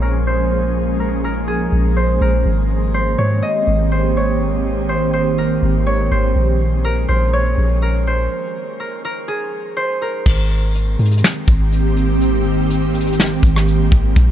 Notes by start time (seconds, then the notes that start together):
Already playing: A#1 F3 G#3 A#3 C#4 G#4 C#5
0.02 A#4
0.27 C5
1.00 A#4
1.24 A#4
1.48 G#4
1.72 A#1
1.97 C5
2.21 A#1 A#4
2.45 G#1 D#3 A#3 C4 G4
2.94 C5
3.18 G#2 C#5
3.42 D#5
3.67 G#1
3.92 C5
4.17 C#5
4.89 C5
5.13 C5
5.38 A#4
5.62 G#1
5.87 C#5
6.11 G#1 C5
6.35 A#1 F3 G#3 A#3 C#4 G#4
6.84 A#4
7.08 A#1 C5
7.33 C#5
7.58 A#1
7.82 A#4
8.07 C5
8.80 A#4
9.05 A#4
9.28 G#4
9.77 C5
10.02 A#4
10.26 G#1 D#3 G#3 A#3 C4 G4, kick, crash
10.75 closed hi-hat
10.99 G#2, closed hi-hat
11.05 closed hi-hat
11.11 closed hi-hat
11.17 closed hi-hat
11.24 snare
11.48 G#1, kick, closed hi-hat
11.72 closed hi-hat
11.97 closed hi-hat
12.21 closed hi-hat
12.70 closed hi-hat
12.94 closed hi-hat
13.00 closed hi-hat
13.07 closed hi-hat
13.13 closed hi-hat
13.20 snare
13.43 G#1, kick, closed hi-hat
13.56 cross-stick
13.68 closed hi-hat
13.92 G#1, kick, closed hi-hat
14.16 A#1 F3 C#4 G#4, kick, closed hi-hat